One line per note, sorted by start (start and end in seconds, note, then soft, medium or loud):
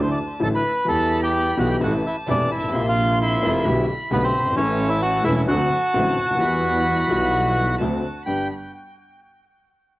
0.00 0.13 D2 medium
0.00 0.14 D2 loud
0.00 0.13 D3 medium
0.00 0.13 F#3 medium
0.00 0.14 A3 medium
0.00 0.14 E4 medium
0.00 0.10 C5 medium
0.00 0.65 A5 medium
0.11 0.19 D5 medium
0.39 0.60 A1 medium
0.39 0.61 A1 medium
0.39 0.60 A2 medium
0.39 0.60 D3 medium
0.39 0.60 F#3 medium
0.39 0.60 A3 medium
0.39 0.60 E4 medium
0.39 0.48 A5 loud
0.44 0.49 A4 medium
0.55 0.87 B4 medium
0.55 0.90 B5 medium
0.85 1.53 E2 medium
0.85 1.54 E2 loud
0.85 1.53 E3 medium
0.85 1.53 G3 medium
0.85 1.53 B3 medium
0.85 1.54 B3 medium
0.85 1.54 E4 medium
0.85 1.54 G4 medium
0.85 1.20 A4 medium
0.85 1.31 B5 loud
0.89 1.54 G4 medium
0.89 1.21 A5 loud
1.23 1.55 G4 medium
1.23 1.59 G5 loud
1.34 1.83 B5 loud
1.57 1.77 B1 medium
1.57 1.77 B1 loud
1.57 1.77 B2 medium
1.57 1.77 E3 medium
1.57 1.76 G3 medium
1.57 1.76 B3 medium
1.57 1.77 B3 medium
1.57 1.77 E4 medium
1.57 1.69 F#4 medium
1.57 1.77 G4 medium
1.57 1.77 G4 loud
1.57 1.69 F#5 medium
1.71 1.77 G4 medium
1.71 1.76 G5 medium
1.80 2.00 A1 medium
1.80 2.00 A1 loud
1.80 2.00 A2 medium
1.80 2.00 C3 medium
1.80 2.00 E3 medium
1.80 2.00 A3 medium
1.80 2.00 C4 medium
1.80 2.00 E4 medium
1.80 1.93 F#5 medium
1.80 2.74 A5 medium
1.85 1.94 F#4 medium
2.07 2.16 E4 medium
2.07 2.16 E5 medium
2.27 2.47 E1 medium
2.27 2.47 E2 loud
2.27 2.47 C3 medium
2.27 2.47 E3 medium
2.27 2.46 A3 medium
2.27 2.47 A3 medium
2.27 2.46 C4 medium
2.27 2.50 D4 medium
2.27 2.46 E4 medium
2.27 2.47 E4 medium
2.27 2.50 D5 medium
2.51 2.72 G#1 medium
2.51 2.83 E4 medium
2.51 2.86 E5 medium
2.57 2.62 G1 medium
2.63 2.68 G#1 medium
2.69 2.74 A1 medium
2.69 3.37 C3 medium
2.69 3.38 F3 medium
2.69 3.66 C6 loud
2.73 3.38 A#1 loud
2.73 3.39 A#1 medium
2.73 3.39 A#2 medium
2.73 3.39 A#3 medium
2.73 3.39 C4 medium
2.73 3.39 F4 loud
2.73 3.40 F4 medium
2.88 3.19 F4 medium
2.88 3.19 F5 loud
3.21 3.85 E4 medium
3.21 3.86 E5 medium
3.42 3.62 F1 loud
3.42 3.62 F2 loud
3.42 3.61 C3 medium
3.42 3.61 F3 medium
3.42 3.61 A#3 medium
3.42 3.62 A#3 medium
3.42 3.62 C4 medium
3.42 3.62 F4 medium
3.42 3.62 F4 loud
3.64 3.84 B1 loud
3.64 3.85 B1 loud
3.64 3.84 B2 loud
3.64 3.84 D3 medium
3.64 3.84 A3 medium
3.64 3.85 A3 medium
3.64 3.84 B3 medium
3.64 3.85 B3 medium
3.64 3.84 G4 loud
3.64 3.85 G4 loud
3.64 4.55 B5 loud
4.10 4.30 B1 medium
4.10 4.30 B1 loud
4.10 4.30 B2 medium
4.10 4.30 D3 medium
4.10 4.30 A3 medium
4.10 4.31 A3 medium
4.10 4.30 B3 medium
4.10 4.31 B3 medium
4.10 4.22 B3 medium
4.10 4.30 G4 medium
4.10 4.31 G4 loud
4.10 4.24 B4 medium
4.24 4.55 C4 medium
4.24 4.55 C5 medium
4.35 4.56 G1 medium
4.40 4.45 F#1 medium
4.45 4.51 G1 medium
4.50 4.56 G#1 medium
4.55 5.22 A1 loud
4.55 5.22 A2 loud
4.55 5.21 E3 medium
4.55 5.22 A3 medium
4.55 5.22 A3 loud
4.55 4.88 C#4 medium
4.55 5.23 C#4 medium
4.55 5.22 C#4 medium
4.55 5.23 E4 loud
4.55 5.23 A4 medium
4.55 4.89 C#5 loud
4.55 5.44 A5 loud
4.89 5.01 E4 medium
4.89 5.01 E5 loud
5.02 5.24 F#4 loud
5.02 5.24 F#5 loud
5.23 5.44 E1 loud
5.23 5.45 E1 loud
5.23 5.44 E2 loud
5.23 5.44 E3 medium
5.23 5.44 A3 medium
5.23 5.44 C#4 medium
5.23 5.33 E4 medium
5.23 5.44 E4 loud
5.23 5.44 A4 loud
5.23 5.35 E5 loud
5.35 5.41 E4 medium
5.35 5.42 E5 loud
5.48 5.68 D2 loud
5.48 5.67 D3 loud
5.48 5.67 F#3 medium
5.48 5.67 A3 medium
5.48 5.67 C4 medium
5.48 5.68 D4 loud
5.48 7.75 F#4 medium
5.48 5.68 F#4 medium
5.48 7.75 F#5 loud
5.48 6.42 A5 loud
5.94 6.14 A1 loud
5.94 6.14 A1 medium
5.94 6.14 A2 medium
5.94 6.14 D3 medium
5.94 6.14 F#3 medium
5.94 6.14 A3 medium
5.94 6.14 C4 medium
5.94 6.14 D4 medium
5.94 6.14 F#4 medium
6.18 6.41 D2 medium
6.25 6.30 C#2 soft
6.30 6.35 D2 medium
6.35 6.41 D#2 medium
6.35 7.06 E3 medium
6.40 7.06 E2 loud
6.40 7.07 E2 loud
6.40 7.06 G3 medium
6.40 7.06 B3 medium
6.40 7.06 E4 loud
6.40 7.07 E4 medium
6.40 7.80 B5 loud
7.08 7.76 B1 loud
7.08 7.76 B2 medium
7.08 7.75 E3 medium
7.08 7.76 G3 medium
7.08 7.76 B3 medium
7.08 7.76 E4 loud
7.08 7.77 E4 medium
7.78 7.99 D2 medium
7.78 8.00 D2 medium
7.78 8.00 D3 medium
7.78 7.99 F#3 medium
7.78 8.00 A3 medium
7.78 7.99 C4 medium
7.78 8.00 C4 medium
7.78 7.99 D4 medium
7.78 8.00 F#4 medium
7.78 8.25 A5 medium
8.25 8.46 G1 medium
8.25 8.46 G2 medium
8.25 8.46 G3 medium
8.25 8.46 B3 medium
8.25 8.46 B3 soft
8.25 8.46 D4 medium
8.25 8.46 G4 medium
8.25 8.48 G5 medium
8.25 8.47 B5 medium